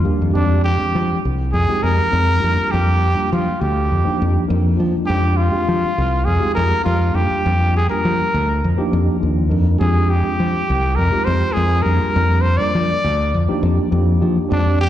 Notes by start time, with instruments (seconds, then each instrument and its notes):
0.04 fingered electric bass D#2, tine electric piano D#3 G3 A#3 D4 G4
0.22 fingered electric bass F2
0.33 fingered electric bass F2, tine electric piano F3 G#3 C4 D4 G4, trumpet D4
0.64 trumpet G4
0.78 tine electric piano F3 G#3 C4 D4 G4, muted fingered electric bass stroke
0.95 fingered electric bass F3
1.12 muted fingered electric bass stroke
1.25 fingered electric bass C2
1.53 fingered electric bass F2, trumpet G#4
1.68 tine electric piano F3 G#3 C4 D#4 G4, muted fingered electric bass stroke
1.83 fingered electric bass F2, trumpet A#4
2.11 fingered electric bass F2, tine electric piano F3 C4 D#4 G#4
2.40 fingered electric bass F2, tine electric piano G3 A#3 D4 F4 G4
2.61 muted fingered electric bass stroke
2.71 fingered electric bass F2, trumpet G4
3.15 tine electric piano G3 A#3 D4 F4 G4
3.19 muted fingered electric bass stroke
3.32 fingered electric bass F3, trumpet F4
3.49 muted fingered electric bass stroke
3.59 fingered electric bass D2, tine electric piano F4 G4, trumpet G4
3.92 fingered electric bass F2
4.04 tine electric piano F3 A#3 D4 D#4 G4
4.09 muted fingered electric bass stroke
4.22 fingered electric bass F2
4.48 fingered electric bass F2, tine electric piano F3 A#3 D4 D#4 A#4
4.77 tine electric piano F3 A#3 D4 D#4 F4, fingered electric bass F3
4.97 muted fingered electric bass stroke
5.05 tine electric piano G#3 C4 D4 F4 G4, trumpet G4
5.10 fingered electric bass F2
5.36 trumpet F4
5.51 tine electric piano G#3 C4 D4 F4 G4, muted fingered electric bass stroke
5.69 fingered electric bass F3
5.85 muted fingered electric bass stroke
5.96 fingered electric bass C2, tine electric piano F4 G4
6.25 fingered electric bass F2, trumpet G#4
6.40 tine electric piano G#3 C4 D#4 F4 G4
6.44 muted fingered electric bass stroke
6.55 fingered electric bass F2, trumpet A#4
6.84 fingered electric bass F2, tine electric piano G#3 C4 D#4 F4 G4, trumpet F4
7.14 fingered electric bass F2, tine electric piano G3 A#3 D4 F4 G4, trumpet G4
7.31 muted fingered electric bass stroke
7.46 fingered electric bass F2
7.76 trumpet G#4
7.90 tine electric piano G3 A#3 D4 F4 G4, trumpet A#4, muted fingered electric bass stroke
8.05 fingered electric bass F3
8.20 muted fingered electric bass stroke
8.34 fingered electric bass D2, tine electric piano G4
8.64 fingered electric bass F2
8.77 tine electric piano F3 A#3 D4 D#4 G4, muted fingered electric bass stroke
8.93 fingered electric bass F2
9.20 fingered electric bass D#2, tine electric piano F3 A#3 D4 D#4 F4
9.49 fingered electric bass F2, tine electric piano F3 A#3 D4 D#4 A#4
9.78 fingered electric bass F2, tine electric piano G#3 C4 D4 F4 G4, trumpet G#4
10.10 trumpet G4
10.23 tine electric piano G#3 C4 D4 F4 G4, muted fingered electric bass stroke
10.40 fingered electric bass F3
10.56 muted fingered electric bass stroke
10.67 fingered electric bass C2, tine electric piano F4 G#4
10.95 fingered electric bass F2, trumpet A#4
11.12 tine electric piano G#3 C4 D#4 F4 G4, muted fingered electric bass stroke
11.25 fingered electric bass F2, trumpet C5
11.52 tine electric piano G#3 C4 D#4 F4 A#4, trumpet G#4
11.57 fingered electric bass F2
11.82 fingered electric bass F2, tine electric piano G3 A#3 D4 F4 G4, trumpet A#4
12.04 muted fingered electric bass stroke
12.16 fingered electric bass F2
12.41 trumpet C5
12.57 tine electric piano G3 A#3 D4 F4 A#4, trumpet D5
12.62 muted fingered electric bass stroke
12.75 fingered electric bass F3
12.92 muted fingered electric bass stroke
13.03 fingered electric bass D2, tine electric piano F4 G4
13.34 fingered electric bass F2
13.48 tine electric piano F3 A#3 D4 D#4 G4, muted fingered electric bass stroke
13.63 fingered electric bass F2
13.91 fingered electric bass F2, tine electric piano F3 A#3 D4 D#4 G4
14.20 tine electric piano F3 A#3 D4 D#4 G4, fingered electric bass F3
14.38 muted fingered electric bass stroke
14.49 fingered electric bass F2, tine electric piano F3 G#3 C4 D4 G4, trumpet D4
14.81 trumpet G4